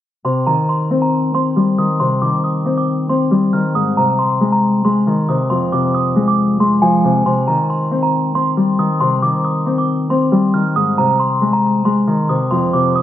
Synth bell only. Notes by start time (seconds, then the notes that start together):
0.25 C6
0.47 A#5
0.69 C6
1.02 A#5
1.35 C6
1.78 D#6
2.00 C6
2.22 D6
2.44 D#6
2.78 D6
3.10 C6
3.53 F6
3.75 D#6
3.97 A#5
4.19 C6
4.53 A#5
4.85 C6
5.29 D#6
5.50 C6
5.72 D6
5.94 D#6
6.28 D6
6.60 C6
6.82 G#5
7.26 C6
7.47 A#5
7.70 C6
8.03 A#5
8.35 C6
8.79 D#6
9.01 C6
9.23 D6
9.45 D#6
9.78 D6
10.10 C6
10.54 F6
10.76 D#6
10.98 A#5
11.20 C6
11.53 A#5
11.85 C6
12.29 D#6
12.51 C6
12.73 D6
12.95 D#6